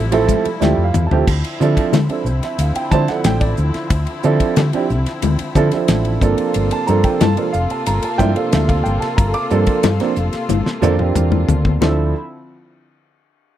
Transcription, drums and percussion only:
0.12 ride medium
0.28 kick medium
0.28 hi-hat pedal medium
0.28 muted conga soft
0.28 high conga medium
0.45 ride medium
0.61 snare medium
0.61 hi-hat pedal medium
0.61 high conga medium
0.94 hi-hat pedal medium
0.94 mid tom medium
0.94 low conga medium
1.11 floor tom medium
1.27 kick loud
1.27 crash loud
1.27 muted conga soft
1.44 ride medium
1.61 hi-hat pedal medium
1.61 muted conga soft
1.77 kick medium
1.77 ride medium
1.93 snare loud
1.93 hi-hat pedal medium
1.93 ride medium
1.93 high conga medium
2.09 ride medium
2.26 hi-hat pedal medium
2.43 snare soft
2.43 ride medium
2.59 hi-hat pedal medium
2.59 ride medium
2.59 muted conga soft
2.75 ride medium
2.91 kick medium
2.91 hi-hat pedal medium
2.91 high conga medium
3.08 snare soft
3.08 ride medium
3.24 snare loud
3.24 hi-hat pedal medium
3.24 ride medium
3.24 high conga medium
3.41 kick medium
3.41 ride medium
3.57 hi-hat pedal medium
3.57 muted conga soft
3.74 snare soft
3.74 ride medium
3.90 kick loud
3.90 hi-hat pedal medium
3.90 ride medium
3.90 muted conga soft
4.07 ride medium
4.23 hi-hat pedal medium
4.23 muted conga soft
4.40 kick medium
4.40 ride medium
4.56 snare loud
4.56 hi-hat pedal medium
4.56 ride medium
4.56 high conga medium
4.73 ride medium
4.90 hi-hat pedal medium
5.06 snare soft
5.06 ride medium
5.22 hi-hat pedal medium
5.22 ride medium
5.22 muted conga soft
5.22 high conga medium
5.22 low conga medium
5.39 ride medium
5.55 kick medium
5.55 hi-hat pedal medium
5.55 low conga medium
5.71 snare soft
5.71 ride medium
5.88 snare loud
5.88 hi-hat pedal medium
5.88 ride medium
5.88 high conga medium
6.05 ride medium
6.21 kick medium
6.21 hi-hat pedal medium
6.21 muted conga soft
6.38 ride medium
6.54 hi-hat pedal medium
6.54 ride medium
6.54 muted conga soft
6.71 ride medium
6.87 hi-hat pedal medium
6.87 muted conga soft
7.04 kick medium
7.04 ride medium
7.21 snare loud
7.21 hi-hat pedal medium
7.21 ride medium
7.21 high conga loud
7.37 ride medium
7.53 hi-hat pedal medium
7.70 ride medium
7.86 hi-hat pedal medium
7.86 ride medium
7.86 muted conga soft
8.02 ride medium
8.19 kick medium
8.19 hi-hat pedal medium
8.19 high conga medium
8.36 ride medium
8.52 snare loud
8.52 hi-hat pedal medium
8.52 ride medium
8.52 high conga medium
8.69 kick medium
8.69 ride medium
8.85 hi-hat pedal medium
8.85 muted conga soft
9.02 snare soft
9.02 ride medium
9.18 kick loud
9.18 hi-hat pedal medium
9.18 ride medium
9.18 muted conga soft
9.34 ride medium
9.50 hi-hat pedal medium
9.50 muted conga soft
9.67 kick medium
9.67 ride medium
9.83 snare loud
9.83 hi-hat pedal medium
9.83 ride medium
9.83 high conga loud
10.00 snare soft
10.00 ride medium
10.16 hi-hat pedal medium
10.33 snare soft
10.33 ride medium
10.49 hi-hat pedal medium
10.49 high tom medium
10.49 muted conga soft
10.49 high conga medium
10.49 low conga medium
10.66 snare medium
10.82 hi-hat pedal medium
10.82 mid tom medium
10.82 low conga medium
10.99 mid tom medium
11.15 hi-hat pedal medium
11.15 mid tom medium
11.15 high conga medium
11.32 mid tom medium
11.32 high conga medium
11.48 floor tom medium
11.48 hi-hat pedal medium
11.48 low conga medium
11.65 kick medium
11.65 low conga medium
11.82 snare loud
11.82 muted conga medium

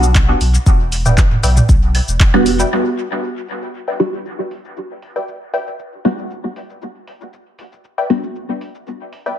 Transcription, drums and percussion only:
0.03 cabasa soft
0.15 kick loud
0.15 clap medium
0.15 cabasa soft
0.41 open hi-hat medium
0.41 cabasa soft
0.54 cabasa soft
0.66 kick loud
0.66 cabasa medium
0.92 open hi-hat medium
0.92 cabasa soft
1.06 mid tom medium
1.06 cabasa soft
1.18 kick loud
1.18 clap medium
1.18 cabasa medium
1.31 mid tom medium
1.43 open hi-hat medium
1.43 cabasa soft
1.57 mid tom medium
1.57 cabasa soft
1.69 kick loud
1.69 cabasa soft
1.95 open hi-hat medium
1.95 claves soft
2.08 cabasa soft
2.20 kick loud
2.20 clap medium
2.20 cabasa soft
2.34 claves soft
2.46 open hi-hat medium
2.46 cabasa soft
2.60 cabasa soft
2.72 cabasa soft
2.97 open hi-hat medium
3.11 cabasa soft
3.23 cabasa soft
3.48 open hi-hat medium
3.48 cabasa soft
3.62 cabasa soft
3.74 cabasa soft
4.00 open hi-hat medium
4.13 cabasa soft
4.26 cabasa soft
4.51 open hi-hat medium
4.51 cabasa soft
4.65 cabasa soft
4.77 cabasa soft
5.02 open hi-hat medium
5.16 cabasa soft
5.28 cabasa soft
5.54 open hi-hat medium
5.54 cabasa soft
5.67 cabasa soft
5.79 cabasa soft
6.05 open hi-hat medium
6.18 cabasa soft
6.31 cabasa soft
6.56 open hi-hat medium
6.56 cabasa soft
6.70 cabasa soft
6.82 cabasa soft
7.07 open hi-hat medium
7.21 cabasa soft
7.33 cabasa soft
7.59 open hi-hat medium
7.59 cabasa soft
7.72 cabasa soft
7.84 cabasa soft
8.10 open hi-hat medium
8.24 cabasa soft
8.36 cabasa soft
8.61 open hi-hat medium
8.61 cabasa soft
8.75 cabasa soft
8.87 cabasa soft
9.13 open hi-hat medium
9.13 cabasa soft
9.26 cabasa soft

